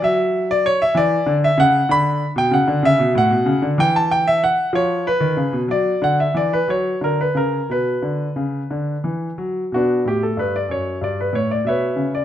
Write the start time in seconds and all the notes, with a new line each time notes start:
0.02 F#3 E5
0.51 D5
0.66 C#5
0.82 E5
0.95 E3 D5
1.26 D3
1.44 E5
1.58 C#3 F#5
1.89 D3 B5
2.36 B2 G5
2.51 C#3 F#5
2.68 D3
2.83 C#3 E5
2.99 B2
3.15 A2 F#5
3.31 B2
3.46 C#3
3.62 D3
3.78 E3 G5
3.96 A5
4.11 G5
4.27 E5
4.44 F#5
4.73 F3 C#5
5.07 B4
5.20 D#3
5.37 C#3
5.53 B2
5.68 F#3 D5
6.02 D3 F#5
6.20 E5
6.34 E3 D5
6.53 B4
6.68 F#3 C#5
7.01 D3 A#4
7.21 B4
7.35 C#3 A#4
7.69 B2 B4
8.02 D3
8.36 C#3
8.71 D3
9.04 E3
9.38 F#3
9.72 B2 B3 D4 F#4
10.05 A2 G4
10.23 A4
10.37 G2 B4
10.56 D5
10.69 F#2 C#5
11.01 G2 D5
11.21 B4
11.33 A2 C#5
11.51 D5
11.65 B2 B4 C#5 E5
11.96 C#3
12.15 D5